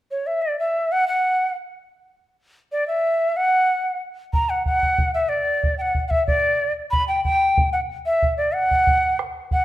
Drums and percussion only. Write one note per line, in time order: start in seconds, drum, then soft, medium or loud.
4.33 bombo low medium
4.66 bombo low medium
4.83 bombo low soft
4.98 bombo low medium
5.64 bombo low medium
5.95 bombo low medium
6.11 bombo low soft
6.28 bombo low medium
6.93 bombo low medium
7.25 bombo low medium
7.58 bombo low medium
8.23 bombo low medium
8.71 bombo low soft
8.87 bombo low medium
9.19 bombo rim soft
9.51 bombo low medium